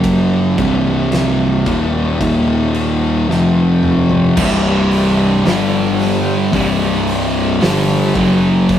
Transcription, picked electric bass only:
Already playing: F#1
0.58 C1
1.67 D#1
2.21 D#1
3.29 F1
4.37 C1
5.45 G1
6.53 C1
7.62 G1
8.15 F#1

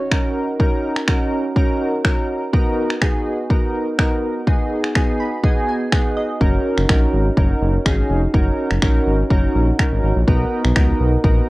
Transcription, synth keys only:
0.11 C#4 D#4 F#4 A#4
0.60 C#4 D#4 F#4 A#4
1.08 C#4 D#4 F#4 A#4
1.57 C#4 D#4 F#4 A#4
2.05 C#4 D#4 F#4 A#4
2.53 B3 D#4 F#4 A#4
3.01 B3 D#4 F#4 G#4
3.50 B3 D#4 F#4 A#4
3.98 B3 D#4 F#4 A#4
4.47 B3 D#4 F#4 G#4
4.95 B3 D#4 F#4 G#4
5.20 B5
5.44 B3 D#4 F#4 G#4 G#5
5.68 G#5
5.92 B3 D#4 F#4 G#4 F#5
6.17 D#5
6.41 C#4 D#4 F#4 A#4
6.89 C#4 D#4 F#4 A#4
7.37 C#4 D#4 F#4 A#4
7.86 C#4 D#4 F#4 G#4
8.34 C#4 D#4 F#4 A#4
8.82 C#4 D#4 F#4 A#4
9.31 C#4 D#4 F#4 A#4
9.79 C#4 D#4 F#4 A#4
10.27 B3 D#4 F#4 A#4
10.76 B3 D#4 F#4 A#4
11.24 B3 D#4 F#4 A#4

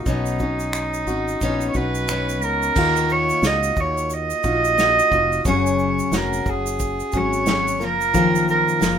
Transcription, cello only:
0.07 D#4
1.70 C#5
1.76 B4
2.44 A#4
3.12 C#5
3.46 D#5
3.80 C#5
4.14 D#5
5.48 C#5
6.16 A#4
6.50 G#4
7.17 C#5
7.83 A#4
8.50 A#4

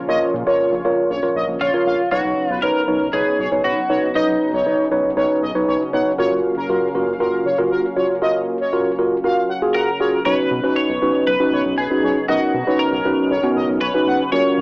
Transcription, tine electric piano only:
0.09 F4 A#4 C#5
0.47 F4 A#4 C#5
0.85 F4 A#4 C#5
1.23 F4 A#4 C#5
1.74 F4 A#4 C#5
2.12 D#4 B4 C#5
2.63 D#4 B4 C#5
2.88 D#4 B4 C#5
3.14 D#4 B4 C#5
3.52 D#4 B4 C#5
3.90 D#4 B4 C#5
4.15 D#4 B4 C#5
4.66 D#4 B4 C#5
4.92 D#4 B4 C#5
5.17 D#4 B4 C#5
5.55 D#4 B4 C#5
5.93 D#4 B4 C#5
6.18 F4 F#4 A#4
6.69 F4 F#4 A#4
6.95 F4 F#4 A#4
7.20 F4 F#4 A#4
7.58 F4 F#4 A#4
7.96 F4 F#4 C#5
8.22 F4 F#4 A#4
8.73 F4 F#4 A#4
8.99 F4 F#4 A#4
9.24 F4 F#4 A#4
9.62 F4 F#4 G#4
10.00 F4 F#4 G#4
10.26 C#4 D#4 F#4 B4
10.64 C#4 D#4 F#4 B4
11.02 C#4 D#4 F#4 B4
11.40 C#4 D#4 F#4 B4
11.91 C#4 D#4 F#4 B4
12.29 C#4 D#4 F#4 A#4
12.67 C#4 D#4 F#4 B4
13.05 C#4 D#4 F#4 B4
13.43 B3 C#4 D#4 F#4
13.94 C#4 D#4 F#4 B4
14.32 C#4 F4 F#4 A#4

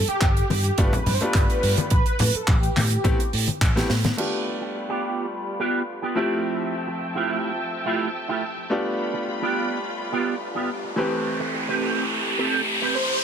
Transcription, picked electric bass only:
0.08 muted picked electric bass stroke
0.22 G1
0.50 G2
0.78 G1
1.07 G2
1.22 muted picked electric bass stroke
1.35 G1
1.63 G2
1.91 A1
2.20 A2
2.35 muted picked electric bass stroke
2.48 A1
2.77 A2
3.05 A1
3.33 A2
3.48 muted picked electric bass stroke
3.61 A1
3.90 A2

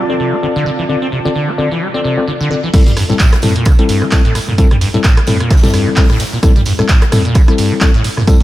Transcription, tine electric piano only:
0.09 C4 F4 A4 D5
0.43 C4 F4 A4 D5
0.89 C4 F4 A4 D5
1.25 C4 F4 A4 D5
1.58 C4 F4 A4 D5
1.94 C4 F4 A4 D5
2.17 C4 F4 A4 D5
2.50 C4 F4 A4 D5
2.73 G3 C4 E4 A4
3.10 G3 C4 E4 A4
3.43 G3 C4 E4 A4
3.79 G3 C4 E4 A4
4.12 G3 C4 E4 A4
4.58 G3 C4 E4 A4
4.94 G3 C4 E4 A4
5.27 G3 C4 E4 A4
5.63 G3 C4 E4 A4
5.97 G3 C4 E4 A4
6.43 G3 C4 E4 A4
6.79 G3 C4 E4 A4
7.12 G3 C4 E4 A4
7.48 G3 C4 E4 A4
7.81 G3 C4 E4 A4
8.27 G3 C4 E4 A4

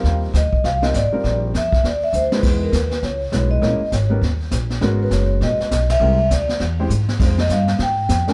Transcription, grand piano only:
Already playing: G3 C4 D#4 F4 A#4
0.82 G3 C4 D#4 F4 A#4
1.13 G3 C4 D#4 F4 A#4
2.32 G#3 B3 D#4 E4 B4
3.32 G#3 B3 D#4 E4 B4
3.61 G#3 A#3 C#4 E4 A#4
4.10 G3 B3 C#4 D#4 A#4
4.81 G#3 B3 C#4 F#4 A#4
6.01 G#3 C4 E4 G4 A#4
6.79 G#3 C4 E4 G4 C5
7.20 G#3 C4 D#4 F4 C5
8.28 G#3 A#3 D4 F4 A#4

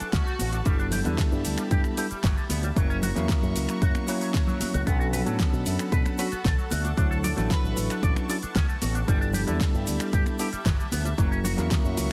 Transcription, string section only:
Already playing: A4 F#5 A5 C#6
0.65 G4 E5 B5
2.77 F#4 A#5 C#6
4.87 A4 F#5 A5 B5
6.71 C#6
9.07 G4 E5 B5
11.18 F#4 A#5 C#6

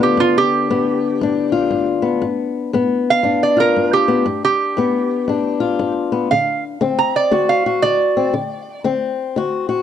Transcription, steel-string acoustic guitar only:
Already playing: G2 D3 D4 F4
0.00 B3
0.17 G2
0.70 G2 B3
1.21 G2 D4
1.52 F4
1.71 G2
2.02 B3
2.22 G2
2.73 G2 B3
3.23 G2 D4
3.57 F4
3.76 G2
4.08 B3
4.26 G2
4.77 G2 B3
5.28 G2 D4
5.60 F4
5.79 G2
6.12 B3
6.32 D3
6.81 D3 C4
7.31 D3 F#4
7.66 F#4
7.83 D3
8.17 C4
8.34 D3
8.84 D3 C4
9.36 D3 F#4
9.69 F#4

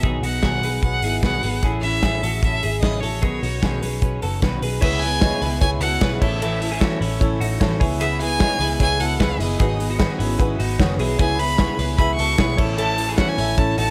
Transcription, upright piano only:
4.81 E4 B4 C#5
5.20 E4 B4 D#5
5.61 E4 B4 C#5
6.01 E4 B4 C#5
6.21 E4 A4 C#5
6.80 E4 A4 C#5
7.21 E4 A4 C#5
7.60 E4 A4 C#5
7.80 E4 B4 C#5
8.39 E4 B4 D#5
8.80 E4 B4 C#5
9.20 E4 B4 E5
9.60 F#4 G#4 B4
9.99 F#4 G#4 B4
10.39 F#4 G#4 B4
10.79 F#4 G#4 C#5
11.18 E4 B4 C#5
11.58 E4 B4 C#5
11.98 E4 B4 E5
12.38 E4 B4 C#5
12.57 E4 A4 C#5
13.18 E4 A4 C#5
13.58 E4 A4 C#5

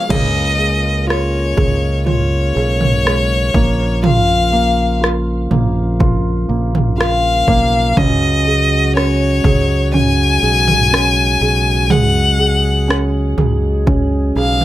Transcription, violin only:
Already playing: F5
0.11 D#5
1.09 C#5
2.08 C#5
4.05 F5
6.99 F5
7.97 D#5
8.96 C#5
9.94 G#5
11.91 F#5
14.37 F5

